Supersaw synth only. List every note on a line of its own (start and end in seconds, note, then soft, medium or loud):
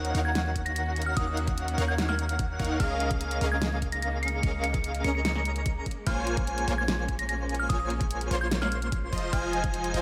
0.00 0.12 D#4 loud
0.00 0.12 A#4 medium
0.00 0.12 C#5 medium
0.00 0.12 F5 medium
0.00 0.12 F#5 loud
0.14 1.14 D#4 medium
0.14 1.14 A#4 medium
0.14 1.14 C#5 medium
0.14 1.14 F5 medium
0.14 1.14 F#5 medium
1.17 1.75 D#4 medium
1.17 1.75 A#4 medium
1.17 1.75 C#5 medium
1.17 1.75 F5 medium
1.17 1.75 F#5 loud
1.78 2.58 D#4 medium
1.78 2.58 A#4 medium
1.78 2.58 C#5 medium
1.78 2.58 F5 medium
1.78 2.58 F#5 medium
2.59 2.77 D#4 loud
2.59 2.78 A#4 medium
2.59 2.77 C#5 medium
2.59 2.77 F5 medium
2.59 2.77 F#5 loud
2.80 3.39 C#4 loud
2.80 3.39 G#4 medium
2.80 3.39 A#4 medium
2.80 3.39 D#5 medium
2.80 3.39 F5 loud
3.41 4.41 C#4 medium
3.41 4.41 G#4 medium
3.41 4.41 A#4 medium
3.41 4.41 D#5 medium
3.41 4.41 F5 medium
4.43 5.02 C#4 medium
4.43 5.02 G#4 medium
4.43 5.02 A#4 medium
4.43 5.02 D#5 medium
4.43 5.02 F5 loud
5.04 5.84 C#4 medium
5.04 5.84 G#4 medium
5.04 5.84 A#4 medium
5.04 5.84 D#5 medium
5.04 5.84 A#5 medium
6.06 6.65 A#3 medium
6.06 6.65 F4 medium
6.06 6.65 C5 medium
6.06 6.65 C#5 medium
6.06 6.65 G#5 loud
6.68 7.67 A#3 medium
6.68 7.67 F4 medium
6.68 7.67 C5 medium
6.68 7.67 C#5 medium
6.68 7.67 G#5 medium
7.70 8.29 A#3 medium
7.70 8.29 F4 medium
7.70 8.29 C5 medium
7.70 8.29 C#5 medium
7.70 8.29 G#5 loud
8.31 9.11 A#3 medium
8.31 9.11 F4 medium
8.31 9.11 C5 medium
8.31 9.11 C#5 medium
8.31 9.11 C6 medium
9.12 9.31 F3 loud
9.12 9.31 F4 medium
9.12 9.31 C5 medium
9.12 9.31 D#5 medium
9.12 9.31 C6 loud
9.33 9.92 F3 medium
9.33 9.92 F4 medium
9.33 9.92 C5 medium
9.33 9.92 D#5 medium
9.33 9.92 G#5 loud
9.94 10.02 F3 medium
9.94 10.02 F4 medium
9.94 10.02 C5 medium
9.94 10.02 D#5 medium
9.94 10.02 G#5 medium